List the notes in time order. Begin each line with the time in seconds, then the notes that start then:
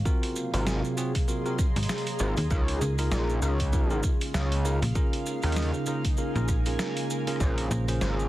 Already playing: F5
0.05 C3 F#3 A#3 C4 F4 F#4 G#4 A#4, kick, maracas
0.23 closed hi-hat
0.36 maracas
0.54 G#1 C4 F4 F#4 A#4, cross-stick, closed hi-hat, maracas
0.67 snare, maracas
0.76 D#5
0.84 C6, maracas
0.97 C4 F4 F#4 G#4, maracas
1.15 A#5, kick, closed hi-hat, maracas
1.28 C4 F4 F#4 A#4, maracas
1.46 C4 F4 F#4 A#4, maracas
1.59 kick, cross-stick, maracas
1.76 G#1, closed hi-hat, maracas
1.83 closed hi-hat
1.89 snare, closed hi-hat, maracas
1.98 closed hi-hat
2.06 closed hi-hat, maracas
2.19 G#1 C4 F4 F#4 A#4, maracas
2.37 D#2, closed hi-hat, maracas
2.51 C#2 C#3 G#3 C#4 D#4 F4 G#4 A#4, kick, maracas
2.68 closed hi-hat
2.81 C#2, maracas
2.98 D#4 F4 G#4 A#4, cross-stick, closed hi-hat, maracas
3.11 A#1, snare, maracas
3.30 maracas
3.42 C#2 D#4 F4 G#4 A#4, maracas
3.60 F5, kick, closed hi-hat, maracas
3.73 D#4 F4 G#4 A#4, kick, maracas
3.90 D#4 F4 G#4 A#4, maracas
4.03 kick, maracas
4.21 closed hi-hat, maracas
4.34 C#2, snare, maracas
4.52 closed hi-hat
4.65 D#4 F4 G#4 A#4, maracas
4.82 A#1, closed hi-hat, maracas
4.95 G#3 C#4 D#4 F4 G#4 A#4, kick, maracas
5.13 closed hi-hat
5.26 maracas
5.42 D#2 C#4 F4 G#4 A#4, cross-stick, closed hi-hat, maracas
5.52 closed hi-hat
5.56 snare, maracas
5.62 closed hi-hat
5.68 G#5
5.74 maracas
5.86 C#4 F4 G#4 A#4, maracas
6.05 kick, closed hi-hat, maracas
6.17 C#4 F4 G#4 A#4, maracas
6.35 A#1 C#4 F4 G#4 A#4, maracas
6.48 kick, cross-stick, maracas
6.66 C#4 F4 G#4 A#4, closed hi-hat, maracas
6.79 snare, maracas
6.97 closed hi-hat, maracas
7.10 maracas
7.27 C#4 F4 G#4 A#4, cross-stick, closed hi-hat, maracas
7.30 cross-stick
7.36 cross-stick
7.40 A#1 C#4 F4 G#4 C5 F5, kick, maracas
7.58 closed hi-hat
7.71 A#1, maracas
7.88 C#4 F4 G#4 C5, cross-stick, closed hi-hat, maracas
8.01 G#1, snare, maracas
8.19 maracas